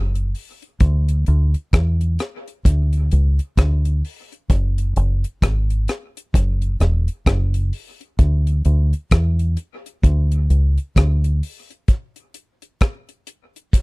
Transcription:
Already playing: F#1
0.15 closed hi-hat
0.35 open hi-hat
0.62 closed hi-hat
0.80 D2, kick, closed hi-hat
1.08 closed hi-hat
1.26 D2, closed hi-hat
1.54 closed hi-hat
1.73 E2, kick, cross-stick, closed hi-hat
2.01 closed hi-hat
2.19 cross-stick, closed hi-hat
2.48 closed hi-hat
2.65 D2, kick, closed hi-hat
2.93 closed hi-hat
3.11 C#2, closed hi-hat
3.39 closed hi-hat
3.57 D2, kick, cross-stick, closed hi-hat
3.85 closed hi-hat
4.05 open hi-hat
4.32 closed hi-hat
4.50 F#1, kick, closed hi-hat
4.78 closed hi-hat
4.96 F#1, closed hi-hat
5.24 closed hi-hat
5.42 G#1, kick, cross-stick, closed hi-hat
5.70 closed hi-hat
5.88 cross-stick, closed hi-hat
6.17 closed hi-hat
6.34 F#1, kick, closed hi-hat
6.62 closed hi-hat
6.80 E1, cross-stick, closed hi-hat
7.08 closed hi-hat
7.26 F#1, kick, cross-stick, closed hi-hat
7.54 closed hi-hat
7.73 open hi-hat
8.01 closed hi-hat
8.19 D2, kick, closed hi-hat
8.47 closed hi-hat
8.65 D2, closed hi-hat
8.93 closed hi-hat
9.11 E2, kick, cross-stick, closed hi-hat
9.39 closed hi-hat
9.57 closed hi-hat
9.86 closed hi-hat
10.03 D2, kick, closed hi-hat
10.32 closed hi-hat
10.50 C#2, closed hi-hat
10.78 closed hi-hat
10.96 D2, kick, cross-stick, closed hi-hat
11.24 closed hi-hat
11.43 open hi-hat
11.71 closed hi-hat
11.88 kick, closed hi-hat
12.16 closed hi-hat
12.34 closed hi-hat
12.62 closed hi-hat
12.81 kick, cross-stick, closed hi-hat
13.09 closed hi-hat
13.27 closed hi-hat
13.56 closed hi-hat
13.73 kick, closed hi-hat

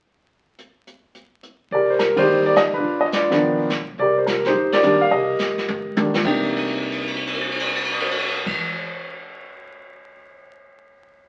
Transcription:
0.58 closed hi-hat
0.87 closed hi-hat
1.15 closed hi-hat
1.43 closed hi-hat
1.71 C2 G4 A#4 D5, brush sweep, kick
1.90 C5
1.99 A#4, snare, hi-hat pedal
2.16 D#3 G3 A#3 C5 D5, kick, ride
2.21 D#4 G4
2.28 G1, brush sweep
2.46 D5
2.56 D#5, snare, hi-hat pedal
2.73 F#1 B4
2.77 D4 F4
2.84 G1, brush sweep, kick
3.01 D#5
3.12 D5, snare, hi-hat pedal
3.17 F4 B4
3.30 D#3 F3 B3 D4, snare
3.41 B1, brush sweep, kick
3.70 snare, hi-hat pedal
3.98 C2 G4 A#4 D5, brush sweep, kick
4.18 C5
4.26 A#4, snare, hi-hat pedal
4.45 D#4 G4 C5, snare
4.55 G1, brush sweep, kick
4.72 G4 A#4 D5, snare, ride
4.83 D#3 G3 A#3 D4, hi-hat pedal
5.01 F5
5.11 C2 G4 A#4 D#5, brush sweep, kick
5.39 A#1, snare, hi-hat pedal
5.58 snare
5.68 G1, high tom
5.96 B1 D#3 G3 A#3 D4, hi-hat pedal, high tom
6.14 snare
6.24 C2 C3 A#3 D4 D#4 G5, kick, crash
6.43 crash
6.49 ride
6.56 crash
6.67 ride
6.75 crash
6.82 ride
6.92 crash
7.01 ride
7.08 crash
7.16 ride
7.27 crash
7.34 ride
7.41 crash
7.51 ride
7.59 crash
7.66 ride
7.76 crash
7.85 ride
7.92 crash
8.00 ride
8.11 crash
8.18 ride
8.26 crash
8.46 kick, crash

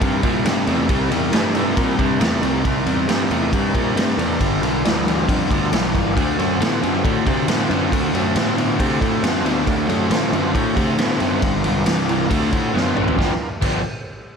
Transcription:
Already playing: D#4 E4 G4 A#4
0.01 G2 C3 G3, kick, ride
0.23 A#2 C3 G3, kick, ride
0.45 G2 C3 A3, snare, ride
0.67 E2 C3 A3, ride
0.89 C2 C3 G3, kick, ride
1.11 E2 C3 G3, ride
1.32 G2 C3 A3, snare, ride
1.54 C3 A3, ride
1.77 A#2 C3 G3, kick, ride
1.99 G2 C3 G3, kick, ride
2.21 E2 C3 A3, snare, ride
2.34 snare
2.42 C2 C3 A3, ride
2.64 C2 C3 G3 D#4 E4 G4 A#4, kick, ride
2.86 E2 C3 G3, ride
3.08 G2 C3 A3, snare, ride
3.30 E2 C3 A3, ride
3.53 G2 C3 G3, kick, ride
3.75 A#2 C3 G3, kick, ride
3.95 G2 C3 A3, snare, ride
4.09 snare
4.18 E2 C3 A3, ride
4.40 G1 G2 D3 B3 D4 F4 A#4, kick, ride
4.62 B1 G2 D3, ride
4.84 D2 G2 E3, snare, ride
5.06 G2 E3, ride
5.28 F2 G2 D3, kick, ride
5.51 D2 G2 D3, kick, ride
5.72 B1 G2 E3, snare, ride
5.95 G1 G2 E3, kick, ride
6.14 D2 D3 A3 C4 F4 F#4 A4, kick, ride
6.39 F#2 D3 A3, ride
6.60 A2 D3 B3, snare, ride
6.82 F#2 D3 B3, ride
7.04 A2 D3 A3, kick, ride
7.26 C3 D3 A3, kick, ride
7.48 A2 D3 B3, snare, ride
7.61 snare
7.69 F#2 D3 B3, ride
7.92 D2 D3 A3, kick, ride
8.13 F#2 D3 A3, ride
8.36 A2 D3 B3, snare, ride
8.58 D3 B3, ride
8.80 C3 D3 A3, kick, ride
9.01 A2 D3 A3, kick, ride
9.23 F#2 D3 B3, snare, ride
9.36 snare
9.45 D2 D3 B3, ride
9.66 D2 D3 A3 A#3 C#4 F#4 G4, kick, ride
9.83 A3 C4 F4 F#4
9.88 F#2 D3 A3, ride
10.10 A2 D3 B3, snare, ride
10.32 F#2 D3 B3, ride
10.54 A2 D3 A3, kick, ride
10.76 C3 D3 A3, kick, ride
10.98 A2 D3 B3, snare, ride
11.11 snare
11.20 F#2 D3 B3, ride
11.42 G1 G2 D3 C4 D#4 F#4 B4, kick, ride
11.56 B3 D4 F4 A#4
11.64 B1 G2 D3, ride
11.86 C2 G2 E3, snare, ride
12.08 G2 E3, ride
12.30 D2 D3 A3 C4 F4 F#4 A4, kick, ride
12.52 A2 D3 A3, kick, ride
12.74 F#2 D3 B3, snare
12.96 A1 D3 B3, mid tom
13.08 floor tom
13.17 G1 G2 D3 F3 B3 D4 F4 G4 A#4, kick, snare
13.61 G1 G2 D3 F3 B3 D4 G4, kick, crash

